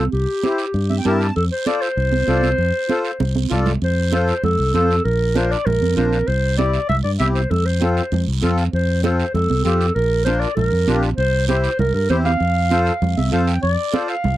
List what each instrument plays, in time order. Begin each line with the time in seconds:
0.12 fingered electric bass C2, clarinet G4, high conga, long guiro
0.43 accordion E4 G4 C5, high conga, short guiro
0.58 short guiro
0.74 fingered electric bass G2, high conga, long guiro
0.90 accordion E5, high conga
0.98 accordion G5
1.05 fingered electric bass G2, accordion E4 G4 A#4 A5, high conga, short guiro
1.21 short guiro
1.36 fingered electric bass F2, clarinet A4, high conga, long guiro
1.52 clarinet C5
1.66 accordion F4 A4 C5, clarinet D5, high conga, short guiro
1.82 clarinet C5, short guiro
1.97 fingered electric bass C2, high conga, long guiro
2.12 high conga
2.28 fingered electric bass C2, accordion F4 A4 D5, high conga, short guiro
2.43 high conga, short guiro
2.58 fingered electric bass F2, high conga, long guiro
2.89 accordion F4 A4 C5, high conga, short guiro
3.05 short guiro
3.20 fingered electric bass C2, high conga, long guiro
3.35 high conga
3.50 fingered electric bass C2, accordion F4 A4 D5, low conga, short guiro
3.66 low conga, short guiro
3.82 fingered electric bass F2, clarinet C5, high conga, long guiro
4.12 accordion F4 A4 C5, clarinet C5, high conga, short guiro
4.28 short guiro
4.43 fingered electric bass F2, clarinet A4, high conga, low conga, long guiro
4.59 fingered electric bass C2
4.74 fingered electric bass F2, accordion F4 A4 C5, clarinet A4, high conga, short guiro
4.91 short guiro
5.05 fingered electric bass A#1, clarinet A#4, high conga, long guiro
5.35 accordion D4 F4 A#4, clarinet C5, high conga, short guiro
5.51 clarinet D5, short guiro
5.66 fingered electric bass A#1, clarinet A#4, high conga, low conga, long guiro
5.81 fingered electric bass F2, high conga
5.96 fingered electric bass A#1, accordion D4 F4 C5, clarinet A#4, high conga, short guiro
6.13 short guiro
6.27 fingered electric bass C2, clarinet C5, high conga, long guiro
6.58 accordion C4 E4 G4, clarinet D5, high conga, short guiro
6.73 short guiro
6.89 fingered electric bass C2, clarinet E5, high conga, low conga, long guiro
7.04 fingered electric bass G2, clarinet D5
7.19 fingered electric bass C2, accordion C4 E4 G4, clarinet E5, high conga, short guiro
7.35 clarinet C5, short guiro
7.50 fingered electric bass F2, clarinet A4, high conga, low conga, long guiro
7.66 clarinet C5
7.80 accordion C4 F4 A4, high conga, short guiro
7.97 short guiro
8.12 fingered electric bass F2, high conga, low conga, long guiro
8.28 fingered electric bass C2
8.42 fingered electric bass F2, accordion C4 F4 A4, high conga, short guiro
8.58 short guiro
8.73 fingered electric bass F2, clarinet C5, high conga, long guiro
9.03 accordion C4 F4 A4, clarinet C5, high conga, short guiro
9.20 short guiro
9.34 fingered electric bass F2, clarinet A4, high conga, low conga, long guiro
9.50 fingered electric bass C2, high conga
9.64 fingered electric bass F2, accordion C4 F4 G4, clarinet A4, high conga, short guiro
9.81 short guiro
9.95 fingered electric bass A#1, clarinet A#4, high conga, long guiro
10.25 accordion D4 F4 A#4, clarinet C5, high conga, short guiro
10.40 clarinet D5, short guiro
10.56 fingered electric bass A#1, clarinet A#4, high conga, low conga, long guiro
10.72 fingered electric bass F2
10.87 fingered electric bass A#1, accordion D4 F4 G4, high conga, short guiro
11.03 short guiro
11.17 fingered electric bass C2, clarinet C5, high conga, long guiro
11.48 accordion E4 G4 C5, clarinet C5, high conga, short guiro
11.64 short guiro
11.79 fingered electric bass C2, clarinet A#4, high conga, low conga, long guiro
11.94 fingered electric bass G2, clarinet A#4
12.09 fingered electric bass E2, accordion E4 G4 C5, clarinet C5, high conga, short guiro
12.25 clarinet F5, high conga, short guiro
12.40 fingered electric bass F2, high conga, long guiro
12.71 accordion F4 A4 C5, high conga, short guiro
12.86 short guiro
13.02 fingered electric bass F2, high conga, low conga, long guiro
13.17 fingered electric bass C2, accordion E5, high conga
13.32 fingered electric bass F2, accordion F4 A4 C5 F5, high conga, short guiro
13.47 accordion G5, short guiro
13.62 fingered electric bass F2, clarinet D5, high conga, long guiro
13.93 accordion F4 A4 C5, high conga, short guiro
14.08 clarinet F5, short guiro
14.24 fingered electric bass C2, high conga, low conga, long guiro